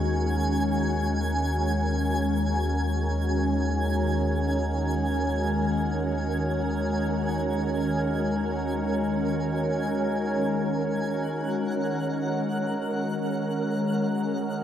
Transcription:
Already playing: synth drone D#2, ambient pad D#3 G#3 C#4 F#4 A#4, synth texture G#5
11.01 synth texture F#5

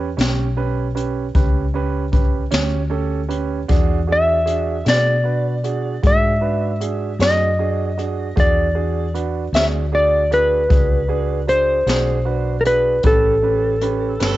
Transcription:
Already playing: fingered electric bass E2
0.17 fingered electric bass B1, upright piano C#4 G4 C#5, snare, closed hi-hat
0.57 upright piano C#4 G4 B4
0.95 upright piano C#4 G4 B4, closed hi-hat
1.35 fingered electric bass C#2, upright piano C#4 G4 B4, kick, closed hi-hat
1.74 upright piano C#4 G4 B4
2.12 upright piano C#4 G4 B4, kick, closed hi-hat
2.51 fingered electric bass D2, upright piano C#4 G4 C#5, snare, closed hi-hat
2.90 upright piano C#4 G4 A4
3.29 upright piano C#4 G4 B4, closed hi-hat
3.68 fingered electric bass E2, upright piano D4 F#4 G#4, kick, closed hi-hat
4.07 upright piano D4 F#4 G#4
4.12 electric slide guitar E5
4.45 upright piano D4 F#4 G#4, closed hi-hat
4.85 fingered electric bass B2, upright piano D4 F#4 G#4, snare, closed hi-hat
4.89 electric slide guitar D5
5.24 upright piano D4 F#4 B4
5.64 upright piano D4 F#4 G#4, closed hi-hat
6.03 fingered electric bass G#2, upright piano D4 F#4 G#4, kick, closed hi-hat
6.07 electric slide guitar E5
6.41 upright piano D4 F#4 B4
6.80 upright piano D4 F#4 G#4, closed hi-hat
7.19 fingered electric bass F#2, upright piano D4 F#4 G#4, electric slide guitar D#5, snare, closed hi-hat
7.59 upright piano D4 F#4 G#4
7.98 upright piano D4 F#4 G#4, closed hi-hat
8.36 fingered electric bass E2, upright piano D4 F#4 G#4, electric slide guitar D5, kick, closed hi-hat
8.75 upright piano D4 F#4 G#4
9.14 upright piano D4 F#4 B4, closed hi-hat
9.53 fingered electric bass D2, upright piano D4 F#4 G#4, electric slide guitar E5, snare, closed hi-hat
9.92 upright piano D4 F#4 G#4, electric slide guitar D5
10.31 upright piano D4 F#4 G#4, electric slide guitar B4, closed hi-hat
10.68 fingered electric bass C#2, upright piano D4 F#4 G#4, kick, closed hi-hat
11.08 upright piano D4 F#4 G#4
11.47 upright piano D4 F#4 G#4, electric slide guitar C5, closed hi-hat
11.86 fingered electric bass B1, upright piano D4 F#4 G#4, snare, closed hi-hat
12.25 upright piano D4 F#4 B4
12.61 electric slide guitar A#4
12.65 upright piano D4 F#4 G#4, electric slide guitar B4, closed hi-hat
13.03 fingered electric bass A1, upright piano C#4 G4 B4, electric slide guitar A4, kick, closed hi-hat
13.42 upright piano C#4 G4 B4
13.81 upright piano C#4 G4 B4, closed hi-hat
14.20 fingered electric bass G1, upright piano C#4 G4 B4, snare, closed hi-hat
14.24 harmonica A4

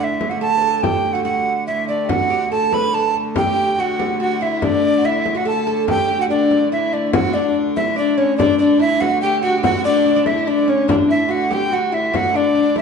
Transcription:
Already playing: hurdy-gurdy D3 A3
0.00 oud E4, recorder E5
0.21 frame drum
0.30 oud F#4, recorder F#5
0.41 oud A4, recorder A5
0.57 oud B4
0.62 oud A4, frame drum
0.78 recorder A5
0.83 oud G4, recorder G5, frame drum
1.13 oud F#4, recorder F#5
1.24 oud F#4, recorder F#5, frame drum
1.67 oud E4, recorder E5, frame drum
1.89 oud D4, recorder D5
2.03 fiddle G4
2.09 hurdy-gurdy D3 A3, oud F#4, fiddle F#4, recorder F#5, frame drum
2.30 oud G4
2.51 fiddle A4, oud A4, recorder A5
2.71 fiddle B4, oud B4, recorder B5, frame drum
2.93 fiddle A4, oud A4, recorder A5
3.15 frame drum
3.36 fiddle G4, oud G4, recorder G5, frame drum
3.78 fiddle F#4, oud F#4, recorder F#5
3.99 oud G4, frame drum
4.20 oud F#4, fiddle F#4, recorder F#5
4.41 oud E4, fiddle E4, recorder E5, frame drum
4.62 oud D4, fiddle D4, recorder D5, frame drum
4.98 oud F#4
5.03 oud E4, fiddle E4, recorder E5
5.26 frame drum
5.35 oud F#4, fiddle F#4, recorder F#5
5.45 oud A4, fiddle A4, recorder A5
5.67 oud A4, frame drum
5.88 oud G4, fiddle G4, recorder G5, frame drum
6.19 oud F#4, recorder F#5
6.29 fiddle D4, oud D4, recorder D5
6.51 oud D4, frame drum
6.70 fiddle E4, oud E4, recorder E5
6.92 oud D4, recorder D5
7.13 hurdy-gurdy D3 A3, fiddle F#4, oud F#4, recorder F#5, frame drum
7.34 fiddle D4, oud D4, recorder D5
7.76 fiddle E4, recorder E5, frame drum
7.96 oud D4, fiddle D4, recorder D5
8.18 fiddle C#4, oud C#4, recorder C#5
8.37 oud D4, fiddle D4, recorder D5, frame drum
8.59 oud D4, fiddle D4, recorder D5
8.79 oud E4, fiddle E4, recorder E5
9.01 oud F#4, fiddle F#4, recorder F#5, frame drum
9.21 fiddle G4, oud G4, recorder G5
9.42 oud F#4, fiddle F#4, recorder F#5
9.58 oud G4
9.63 oud F#4, fiddle F#4, recorder F#5, frame drum
9.84 oud D4, fiddle D4, recorder D5
10.06 oud D4
10.11 oud D4
10.16 oud D4
10.26 fiddle E4, oud E4, recorder E5, frame drum
10.47 fiddle D4, oud D4, recorder D5
10.67 fiddle C#4, oud C#4, recorder C#5
10.87 fiddle D4, oud D4, recorder D5, frame drum
11.09 fiddle E4, recorder E5
11.29 oud F#4, fiddle F#4, recorder F#5
11.50 oud G4, fiddle G4, recorder G5, frame drum
11.71 fiddle F#4, oud F#4, recorder F#5
11.92 oud E4, fiddle E4, recorder E5, frame drum
12.12 hurdy-gurdy D3 A3, fiddle F#4, oud F#4, recorder F#5, frame drum
12.34 oud D4, fiddle D4, recorder D5
12.55 fiddle D4, oud D4
12.76 oud E4, fiddle E4, recorder E5, frame drum

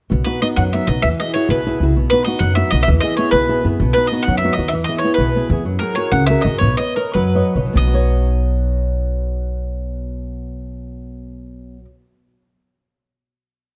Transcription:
0.10 upright bass B1, nylon-string guitar B2
0.24 nylon-string guitar B3 D#4 F#4, mandolin B4
0.42 nylon-string guitar B3 D#4 F#4, mandolin D#5
0.56 upright bass F#2, nylon-string guitar F#3, mandolin F#5
0.73 nylon-string guitar B3 D#4 F#4, mandolin E5
0.87 upright bass B1, nylon-string guitar B3 D#4 F#4, mandolin D#5
1.02 upright bass E2, nylon-string guitar E3, mandolin E5
1.20 nylon-string guitar E4 F#4 G#4, mandolin D#5
1.34 nylon-string guitar E4 F#4 G#4, mandolin C#5
1.49 upright bass B1, nylon-string guitar B2, mandolin B4
1.67 nylon-string guitar E4 F#4 G#4
1.80 upright bass C#2, nylon-string guitar E4 F#4 G#4
1.95 upright bass B1, nylon-string guitar B2
2.10 nylon-string guitar B3 D#4 F#4, mandolin B4
2.24 nylon-string guitar B3 D#4 F#4, mandolin D#5
2.39 upright bass F#2, nylon-string guitar F#3, mandolin F#5
2.55 nylon-string guitar B3 D#4 F#4, mandolin E5
2.71 upright bass B1, nylon-string guitar B3 D#4 F#4, mandolin D#5
2.83 mandolin E5
2.88 upright bass E2, nylon-string guitar E3
3.00 nylon-string guitar B3 E4 G#4, mandolin D#5
3.17 nylon-string guitar B3 E4 G#4, mandolin C#5
3.31 upright bass B1, nylon-string guitar B2, mandolin B4
3.49 nylon-string guitar B3 E4 G#4
3.64 upright bass F#2, nylon-string guitar B3 E4 G#4
3.80 upright bass B1, nylon-string guitar B2
3.93 nylon-string guitar B3 D#4 F#4, mandolin B4
4.07 mandolin D#5
4.12 nylon-string guitar B3 D#4 F#4
4.23 mandolin F#5
4.28 upright bass F#2, nylon-string guitar F#3
4.37 mandolin E5
4.44 nylon-string guitar B3 D#4 F#4
4.53 mandolin D#5
4.58 upright bass D#2, nylon-string guitar B3 D#4 F#4
4.68 mandolin E5
4.73 upright bass E2, nylon-string guitar E3
4.84 mandolin D#5
4.89 nylon-string guitar B3 E4 G#4
4.98 mandolin C#5
5.04 nylon-string guitar B3 E4 G#4
5.14 mandolin B4
5.18 upright bass B1, nylon-string guitar B2
5.35 nylon-string guitar B3 E4 G#4
5.50 upright bass E2, nylon-string guitar B3 E4 G#4
5.65 upright bass F#2, nylon-string guitar F#3
5.79 nylon-string guitar F#4 G#4 A#4, mandolin A#4
5.95 nylon-string guitar F#4 G#4 A#4, mandolin C#5
6.12 upright bass C#2, nylon-string guitar C#3, mandolin F#5
6.26 nylon-string guitar F#4 G#4 A#4, mandolin E5
6.41 upright bass F#2, nylon-string guitar F#4, mandolin D#5
6.45 nylon-string guitar G#4 A#4
6.58 upright bass B1, nylon-string guitar B3, mandolin C#5
6.77 nylon-string guitar B4 C#5 D#5, mandolin D#5
6.96 mandolin A#4, nylon-string guitar B4 C#5 D#5
7.14 upright bass F#2, nylon-string guitar F#3, mandolin B4
7.35 nylon-string guitar B4 C#5 D#5
7.55 upright bass B1, nylon-string guitar B4 C#5 D#5
7.60 nylon-string guitar B2
7.66 nylon-string guitar F#3
7.73 upright bass B1, nylon-string guitar B3, mandolin D#5
7.81 nylon-string guitar D#4
7.87 nylon-string guitar F#4
7.94 nylon-string guitar C#5

